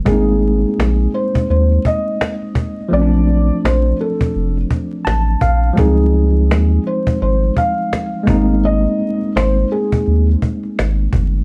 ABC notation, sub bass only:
X:1
M:4/4
L:1/8
Q:"Swing 16ths" 1/4=84
K:Ab
V:1 name="Sub bass" clef=bass
A,,,2 B,,, z E,, z3 | B,,,2 B,,, z F,,, z =A,,, B,,, | D,,2 E,, z A,,, z2 A,,,- | A,,, z A,,, z E,, z A,,, G,,, |]